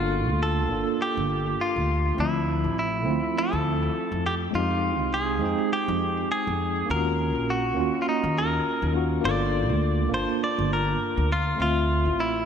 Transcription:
Already playing: G1 A#3 D4 F4 A4
0.29 D2
0.43 A4
0.68 G1 A#3 D4
0.72 F4 A4
1.02 G4
1.17 G1
1.61 F4
1.76 D2
2.15 D2 A3 C4
2.19 F3 E4
2.64 A1
2.79 E4
3.03 D2 A3 C4
3.08 E4 F4
3.38 A4
3.53 D2
4.12 F2
4.26 G4
4.51 F2 G#3 C4
4.55 D#4 F4 G4
5.00 C2
5.14 G#4
5.39 F2 G#3 C4
5.43 D#4 G5
5.73 G4
5.88 F2
6.32 G#4
6.47 F2
6.86 D#2 A#3 C#4
6.90 F4 F#4 A#4
7.35 A#1
7.50 F#4
7.74 D#2 A#3 C#4
7.79 F4 F#4
8.02 F4
8.09 D#4
8.23 D#2
8.38 A#4
8.82 D#2
8.93 A#3 C#4 F4 F#4
9.21 G1 A#3 D4
9.25 F4 A4 D5
9.71 D2
10.09 G1 A#3 D4
10.14 F4 C5 A5
10.44 D5
10.58 G1
10.73 A#4
11.17 D2
11.32 F4
11.56 D2 A3 C4
11.61 F4 E5
12.06 A1
12.20 E4

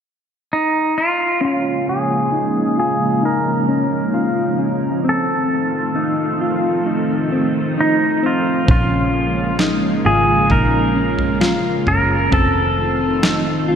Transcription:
0.53 D#4
0.98 F4
1.41 C#3 F3 G#3 A#3 C#4 F4
1.89 G#4
2.32 D#4
2.77 F4 G#4
3.23 D#4 A#4
3.68 C#4
4.14 F4
4.59 C#4
5.05 D#3 A3 C4 F4
5.09 A4
5.96 D#4
6.41 F4
6.86 D#4
7.32 C4
7.78 D#4
8.23 C4 F4
8.68 A#1 C#3 G#3 A#3 C#4 F4, kick, floor tom
9.59 D#4, snare
10.05 G#1 F4 G#4
10.50 A#1 D#4 A#4, kick, floor tom
10.95 C#4
11.19 floor tom
11.41 F4, snare
11.87 F#1 C#4 A#4, floor tom
12.32 F1 D#3 A3 C4 A4, kick, floor tom
13.23 D#4, snare
13.68 A1 F4

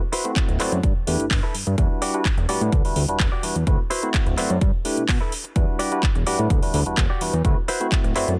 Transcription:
0.12 E4 F#4 B4 C5, open hi-hat
0.25 A3 C4 E4 F#4, closed hi-hat
0.36 kick, clap, closed hi-hat
0.48 D1, muted clean electric guitar stroke, closed hi-hat
0.59 F#2 A3 C4 E4 F#4 B4 C5 D5, clap, open hi-hat
0.72 F#2, closed hi-hat
0.83 G2, kick, closed hi-hat
0.96 E2
1.07 E2 A3 D4 E4 G4 B4, open hi-hat
1.20 G1, closed hi-hat
1.31 G1, kick, clap, open hi-hat
1.43 E4 A4 B4
1.54 G2, open hi-hat
1.67 G2, muted clean electric guitar stroke, closed hi-hat
1.78 E2 G3 D4 E4 F#4 B4, kick, closed hi-hat
2.02 F#4 G4 D5, open hi-hat
2.14 G3 D4 E4 F#4 B4, closed hi-hat
2.25 kick, clap, closed hi-hat
2.37 E1, muted clean electric guitar stroke, closed hi-hat
2.49 A2 G3 D4 E4 F#4 G4 B4 D5 F#5, open hi-hat
2.61 A2, closed hi-hat
2.72 D2, muted clean electric guitar stroke, kick, closed hi-hat
2.84 D2 G3 D4 E4 F#4 B4, open hi-hat
2.96 D2, open hi-hat
3.08 E1 G3 D4 E4 F#4 B4, closed hi-hat
3.20 E1, kick, clap, closed hi-hat
3.32 F#4 G4 D5
3.43 E2 G3 D4 E4 F#4 B4, open hi-hat
3.56 E2, muted clean electric guitar stroke, closed hi-hat
3.67 D2 A3 C4 E4 F#4 B4, kick, closed hi-hat
3.90 E4 F#4 B4 C5, open hi-hat
4.03 A3 C4 E4 F#4, closed hi-hat
4.14 kick, clap, closed hi-hat
4.26 D1, muted clean electric guitar stroke, closed hi-hat
4.37 F#2 A3 C4 E4 F#4 B4 C5 D5, clap, open hi-hat
4.50 F#2, closed hi-hat
4.61 G2, muted clean electric guitar stroke, kick, closed hi-hat
4.85 A3 D4 E4 G4 B4, open hi-hat
4.97 B2, closed hi-hat
5.09 B2, kick, clap, open hi-hat
5.21 E4 A4 B4
5.32 open hi-hat
5.44 muted clean electric guitar stroke, closed hi-hat
5.55 E2 G3 D4 E4 F#4 B4, kick, closed hi-hat
5.79 F#4 G4 D5, open hi-hat
5.91 G3 D4 E4 F#4 B4, closed hi-hat
6.03 kick, clap, closed hi-hat
6.15 E1, muted clean electric guitar stroke, closed hi-hat
6.26 A2 G3 D4 E4 F#4 G4 B4 D5 F#5, open hi-hat
6.39 A2, closed hi-hat
6.50 D2, muted clean electric guitar stroke, kick, closed hi-hat
6.62 D2 G3 D4 E4 F#4 B4, open hi-hat
6.74 D2, open hi-hat
6.86 E1 G3 D4 E4 F#4 B4, closed hi-hat
6.97 E1, kick, clap, closed hi-hat
7.10 F#4 G4 D5
7.21 E2 G3 D4 E4 F#4 B4, open hi-hat
7.33 E2, muted clean electric guitar stroke, closed hi-hat
7.44 D2 A3 C4 E4 F#4 B4, kick, closed hi-hat
7.68 E4 F#4 B4 C5, open hi-hat
7.80 A3 C4 E4 F#4, closed hi-hat
7.92 kick, clap, closed hi-hat
8.04 D1, muted clean electric guitar stroke, closed hi-hat
8.15 F#2 A3 C4 E4 F#4 B4 C5 D5, clap, open hi-hat
8.28 F#2, closed hi-hat

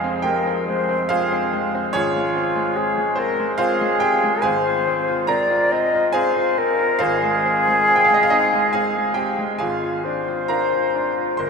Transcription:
Already playing: F1 F2 G#3 C4 F4 G#4 C5 F5
0.04 C4
0.22 G#3 G4 A#4 G5
0.46 C4
0.67 G#3 C5
0.89 C4
1.09 G#3 F4 G#4 C5 F5
1.32 C4
1.53 G#3
1.75 C4
1.93 G#1 C#4 F4 G#4 C#5
2.16 G#3
2.36 C4
2.56 G#3
2.76 C4 G#4
2.97 G#3
3.16 C4 A#4 C5
3.39 G#3
3.58 C4 F4 G#4 C5 F5
3.81 G#3
4.00 C4 G4 G5
4.24 G#3
4.42 G#1 G#4 C5 F5 G#5
4.66 F4
4.87 C4
5.09 F4
5.27 C4 A#4 D5 A#5
5.50 F4
5.72 C4 D#5
5.94 F4
6.12 C4 G#4 C5 F5 G#5
6.36 F4
6.58 C4 A#4
6.79 F4
6.99 G#1 F4 G#4 C5 F5
7.23 G#3
7.45 C4
7.68 G#3
7.89 C4
7.96 G5
8.05 F5
8.11 G#3 D#5
8.23 F5
8.30 C4 D#4 D#5
8.53 G#3
8.73 C4 G#4 F5 G#5
8.96 G#3
9.14 C4 G4 G5
9.39 G#3
9.58 G#1 F4 G#4 F5 G#5
9.83 F4
10.04 D4 C5
10.28 F4
10.48 D4 A#4 F5 A#5
10.72 F4
10.95 D4
11.18 F4
11.37 G1 A#4 C5 C6

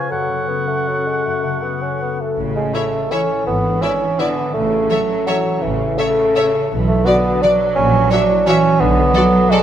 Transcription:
Already playing: C#3 F3 G#3 G#4 B4 C#5
0.10 F#2 F#3 A4 F#5 C#6
0.29 C#3
0.48 B3 C#4
0.68 A3 A4
0.88 F#3 C#4
1.06 G#3 A4
1.25 F#2 A3
1.43 C#3 A3
1.63 B3 C#4
1.82 C#4 A4
2.02 B3 C#4
2.21 A3 A4
2.39 A1 A2 C#3
2.56 G#3 A3
2.74 A3 E4 C#5 E5
2.93 A4
3.11 E3 C#4 E4 C#5 E5
3.30 A4
3.47 G#1 G#2 B3
3.65 D4
3.82 C#4 E4 D5 E5
4.02 D5
4.19 D3 B3 E4 D5 E5
4.37 D5
4.54 A1 A2 C#3 A3
4.73 C#4
4.90 F#3 A4 C#5 E5
5.09 C#5
5.26 E3 F#3 A4 C#5 E5
5.45 C#5
5.62 A1 A2 C#3 E3
5.81 C#4
5.98 C#3 A3 A4 C#5 E5
6.19 C#5
6.36 A4 C#5 E5
6.54 C#5
6.72 B1 B2 E3
6.87 A3 B3
7.05 D3 B3 F#4 D5
7.25 B4
7.42 F#3 D4 F#4 D5
7.61 B4
7.76 A#1 A#2 C#4
7.95 F#3
8.10 D4 F#4 C#5 E5
8.31 E4
8.46 E3 C#4 F#4 C#5 E5
8.65 F#4
8.80 B1 B2 D3 B3
8.98 F#3
9.15 F#3 F#4 A4 D5
9.33 F#4
9.50 G#3 F#4 A4 D5

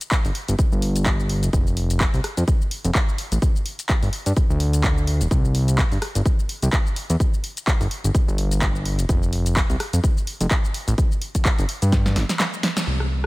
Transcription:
0.01 closed hi-hat, shaker
0.11 kick, clap, closed hi-hat, shaker
0.25 G1, open hi-hat, shaker
0.35 open hi-hat
0.48 G1, closed hi-hat, shaker
0.59 kick, closed hi-hat, shaker
0.72 G1, shaker
0.82 open hi-hat
0.96 closed hi-hat, shaker
1.06 kick, clap, closed hi-hat, shaker
1.20 shaker
1.29 open hi-hat
1.43 F1, closed hi-hat, shaker
1.53 F1, kick, closed hi-hat, shaker
1.67 shaker
1.77 open hi-hat
1.90 closed hi-hat, shaker
2.00 kick, clap, closed hi-hat, shaker
2.14 C2, open hi-hat, shaker
2.24 cross-stick, open hi-hat
2.37 F2, closed hi-hat, shaker
2.48 kick, closed hi-hat, shaker
2.61 shaker
2.71 open hi-hat
2.85 F1, closed hi-hat, shaker
2.95 kick, clap, closed hi-hat, shaker
3.09 shaker
3.18 open hi-hat
3.32 A1, closed hi-hat, shaker
3.42 kick, closed hi-hat, shaker
3.56 shaker
3.66 open hi-hat
3.79 closed hi-hat, shaker
3.89 kick, clap, closed hi-hat, shaker
4.03 G1, open hi-hat, shaker
4.13 open hi-hat
4.26 G2, closed hi-hat, shaker
4.37 kick, closed hi-hat, shaker
4.50 D2, shaker
4.60 open hi-hat
4.73 closed hi-hat, shaker
4.84 kick, clap, closed hi-hat, shaker
4.97 shaker
5.07 open hi-hat
5.21 D1, closed hi-hat, shaker
5.31 C2, kick, closed hi-hat, shaker
5.45 shaker
5.55 open hi-hat
5.68 closed hi-hat, shaker
5.78 kick, clap, closed hi-hat, shaker
5.92 G1, open hi-hat, shaker
6.02 cross-stick, open hi-hat
6.15 G1, closed hi-hat, shaker
6.26 kick, closed hi-hat, shaker
6.39 shaker
6.49 open hi-hat
6.62 C2, closed hi-hat, shaker
6.73 kick, clap, closed hi-hat, shaker
6.87 shaker
6.96 open hi-hat
7.10 E2, closed hi-hat, shaker
7.20 kick, closed hi-hat, shaker
7.34 shaker
7.44 open hi-hat
7.57 closed hi-hat, shaker
7.67 kick, clap, closed hi-hat, shaker
7.81 G1, open hi-hat, shaker
7.91 open hi-hat
8.04 G1, closed hi-hat, shaker
8.15 kick, closed hi-hat, shaker
8.28 G1, shaker
8.38 open hi-hat
8.51 closed hi-hat, shaker
8.62 kick, clap, closed hi-hat, shaker
8.76 shaker
8.85 open hi-hat
8.99 F1, closed hi-hat, shaker
9.09 F1, kick, closed hi-hat, shaker
9.23 shaker
9.33 open hi-hat
9.46 closed hi-hat, shaker
9.56 kick, clap, closed hi-hat, shaker
9.70 C2, open hi-hat, shaker
9.80 cross-stick, open hi-hat
9.93 F2, closed hi-hat, shaker
10.04 kick, closed hi-hat, shaker
10.17 shaker
10.27 open hi-hat
10.40 F1, closed hi-hat, shaker
10.51 kick, clap, closed hi-hat, shaker
10.65 shaker
10.74 open hi-hat
10.88 A1, closed hi-hat, shaker
10.98 kick, closed hi-hat, shaker
11.12 shaker
11.22 open hi-hat
11.35 kick, closed hi-hat, shaker
11.45 kick, clap, closed hi-hat, shaker
11.59 G1, open hi-hat, shaker
11.69 open hi-hat
11.82 G2, closed hi-hat, shaker
11.92 kick, snare, closed hi-hat, shaker
12.06 snare, shaker
12.16 G1, snare, open hi-hat
12.29 snare, closed hi-hat, shaker
12.40 snare, clap, closed hi-hat, shaker
12.53 shaker
12.63 snare, open hi-hat
12.77 snare, closed hi-hat, shaker
12.87 C2
13.00 cross-stick

